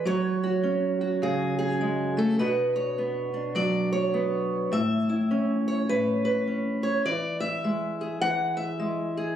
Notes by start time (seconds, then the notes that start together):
0.05 F#3 C#5
0.44 F#4
0.63 C#4
1.01 F#4
1.22 C#3 G#4
1.59 G#4
1.81 G#3
2.17 A3 A4
2.39 B2 B3 D4 F#4 B4
2.76 C#5
2.98 B3
3.34 D4
3.55 F#3 D5
3.92 C#5
4.14 B3
4.72 A2 E5
5.09 E4
5.31 C#4
5.68 C#5
5.89 A2 B4
6.25 B4
6.47 C#4
6.83 C#5
7.05 E3 D5
7.40 E5
7.64 G#3
8.01 G#4
8.21 E3 F#5
8.57 E5
8.79 G#3
9.17 G#4